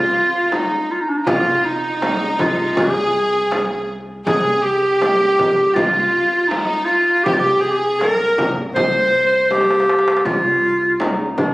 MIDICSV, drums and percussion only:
0, 0, Header, 1, 3, 480
1, 0, Start_track
1, 0, Tempo, 748130
1, 817, Time_signature, 4, 2, 24, 8
1, 7403, End_track
2, 0, Start_track
2, 0, Title_t, "Darbuka"
2, 96, Note_on_c, 9, 62, 24
2, 160, Note_off_c, 9, 62, 0
2, 213, Note_on_c, 9, 62, 26
2, 277, Note_off_c, 9, 62, 0
2, 334, Note_on_c, 9, 63, 64
2, 398, Note_off_c, 9, 63, 0
2, 576, Note_on_c, 9, 62, 25
2, 640, Note_off_c, 9, 62, 0
2, 813, Note_on_c, 9, 64, 97
2, 877, Note_off_c, 9, 64, 0
2, 935, Note_on_c, 9, 62, 27
2, 999, Note_off_c, 9, 62, 0
2, 1056, Note_on_c, 9, 62, 26
2, 1121, Note_off_c, 9, 62, 0
2, 1178, Note_on_c, 9, 62, 25
2, 1242, Note_off_c, 9, 62, 0
2, 1297, Note_on_c, 9, 63, 66
2, 1361, Note_off_c, 9, 63, 0
2, 1535, Note_on_c, 9, 64, 89
2, 1599, Note_off_c, 9, 64, 0
2, 1660, Note_on_c, 9, 62, 25
2, 1724, Note_off_c, 9, 62, 0
2, 1776, Note_on_c, 9, 64, 88
2, 1840, Note_off_c, 9, 64, 0
2, 2019, Note_on_c, 9, 62, 28
2, 2083, Note_off_c, 9, 62, 0
2, 2139, Note_on_c, 9, 62, 26
2, 2203, Note_off_c, 9, 62, 0
2, 2258, Note_on_c, 9, 63, 73
2, 2322, Note_off_c, 9, 63, 0
2, 2501, Note_on_c, 9, 62, 27
2, 2565, Note_off_c, 9, 62, 0
2, 2742, Note_on_c, 9, 64, 81
2, 2806, Note_off_c, 9, 64, 0
2, 2981, Note_on_c, 9, 62, 28
2, 3045, Note_off_c, 9, 62, 0
2, 3099, Note_on_c, 9, 62, 27
2, 3163, Note_off_c, 9, 62, 0
2, 3218, Note_on_c, 9, 63, 68
2, 3282, Note_off_c, 9, 63, 0
2, 3459, Note_on_c, 9, 64, 81
2, 3523, Note_off_c, 9, 64, 0
2, 3578, Note_on_c, 9, 62, 26
2, 3642, Note_off_c, 9, 62, 0
2, 3695, Note_on_c, 9, 64, 85
2, 3759, Note_off_c, 9, 64, 0
2, 3937, Note_on_c, 9, 62, 25
2, 4001, Note_off_c, 9, 62, 0
2, 4057, Note_on_c, 9, 62, 25
2, 4122, Note_off_c, 9, 62, 0
2, 4179, Note_on_c, 9, 63, 70
2, 4243, Note_off_c, 9, 63, 0
2, 4415, Note_on_c, 9, 62, 22
2, 4480, Note_off_c, 9, 62, 0
2, 4658, Note_on_c, 9, 64, 96
2, 4722, Note_off_c, 9, 64, 0
2, 4779, Note_on_c, 9, 62, 25
2, 4843, Note_off_c, 9, 62, 0
2, 4900, Note_on_c, 9, 62, 24
2, 4964, Note_off_c, 9, 62, 0
2, 5018, Note_on_c, 9, 62, 24
2, 5082, Note_off_c, 9, 62, 0
2, 5139, Note_on_c, 9, 63, 66
2, 5203, Note_off_c, 9, 63, 0
2, 5383, Note_on_c, 9, 64, 85
2, 5447, Note_off_c, 9, 64, 0
2, 5506, Note_on_c, 9, 62, 24
2, 5570, Note_off_c, 9, 62, 0
2, 5623, Note_on_c, 9, 64, 86
2, 5687, Note_off_c, 9, 64, 0
2, 5748, Note_on_c, 9, 62, 26
2, 5812, Note_off_c, 9, 62, 0
2, 5867, Note_on_c, 9, 62, 25
2, 5931, Note_off_c, 9, 62, 0
2, 5984, Note_on_c, 9, 62, 26
2, 6048, Note_off_c, 9, 62, 0
2, 6103, Note_on_c, 9, 63, 49
2, 6164, Note_on_c, 9, 62, 56
2, 6167, Note_off_c, 9, 63, 0
2, 6227, Note_on_c, 9, 63, 59
2, 6229, Note_off_c, 9, 62, 0
2, 6288, Note_on_c, 9, 62, 67
2, 6291, Note_off_c, 9, 63, 0
2, 6348, Note_on_c, 9, 63, 69
2, 6352, Note_off_c, 9, 62, 0
2, 6408, Note_on_c, 9, 62, 69
2, 6412, Note_off_c, 9, 63, 0
2, 6465, Note_on_c, 9, 63, 79
2, 6472, Note_off_c, 9, 62, 0
2, 6523, Note_on_c, 9, 62, 80
2, 6529, Note_off_c, 9, 63, 0
2, 6584, Note_on_c, 9, 64, 92
2, 6587, Note_off_c, 9, 62, 0
2, 6648, Note_off_c, 9, 64, 0
2, 6711, Note_on_c, 9, 62, 26
2, 6775, Note_off_c, 9, 62, 0
2, 7069, Note_on_c, 9, 63, 58
2, 7133, Note_off_c, 9, 63, 0
2, 7304, Note_on_c, 9, 64, 84
2, 7368, Note_off_c, 9, 64, 0
2, 7403, End_track
3, 0, Start_track
3, 0, Title_t, "Frame drum"
3, 336, Note_on_c, 9, 64, 67
3, 400, Note_off_c, 9, 64, 0
3, 815, Note_on_c, 9, 64, 91
3, 879, Note_off_c, 9, 64, 0
3, 1299, Note_on_c, 9, 64, 68
3, 1363, Note_off_c, 9, 64, 0
3, 1535, Note_on_c, 9, 64, 82
3, 1599, Note_off_c, 9, 64, 0
3, 1777, Note_on_c, 9, 64, 89
3, 1841, Note_off_c, 9, 64, 0
3, 2255, Note_on_c, 9, 64, 63
3, 2319, Note_off_c, 9, 64, 0
3, 2738, Note_on_c, 9, 64, 84
3, 2802, Note_off_c, 9, 64, 0
3, 3219, Note_on_c, 9, 64, 66
3, 3284, Note_off_c, 9, 64, 0
3, 3461, Note_on_c, 9, 64, 78
3, 3526, Note_off_c, 9, 64, 0
3, 3697, Note_on_c, 9, 64, 91
3, 3761, Note_off_c, 9, 64, 0
3, 4178, Note_on_c, 9, 64, 64
3, 4242, Note_off_c, 9, 64, 0
3, 4658, Note_on_c, 9, 64, 87
3, 4723, Note_off_c, 9, 64, 0
3, 5141, Note_on_c, 9, 64, 64
3, 5206, Note_off_c, 9, 64, 0
3, 5377, Note_on_c, 9, 64, 80
3, 5441, Note_off_c, 9, 64, 0
3, 5621, Note_on_c, 9, 64, 90
3, 5685, Note_off_c, 9, 64, 0
3, 6099, Note_on_c, 9, 64, 62
3, 6163, Note_off_c, 9, 64, 0
3, 6577, Note_on_c, 9, 64, 74
3, 6642, Note_off_c, 9, 64, 0
3, 7057, Note_on_c, 9, 64, 65
3, 7121, Note_off_c, 9, 64, 0
3, 7299, Note_on_c, 9, 64, 76
3, 7363, Note_off_c, 9, 64, 0
3, 7403, End_track
0, 0, End_of_file